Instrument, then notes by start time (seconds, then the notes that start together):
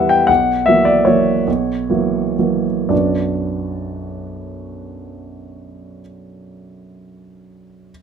grand piano
Already playing: E2 E3 G3 B3 E5 F#5
0.09 G5
0.27 B1 F#5
0.66 E3 F#3 A#3 E5
0.85 D5
1.05 E3 F#3 A#3 C#5
1.47 B1
1.90 E3 F#3 A#3
2.39 E3 F#3 A#3
2.89 B1 F#2 F#3 B3 D4 F#4 D5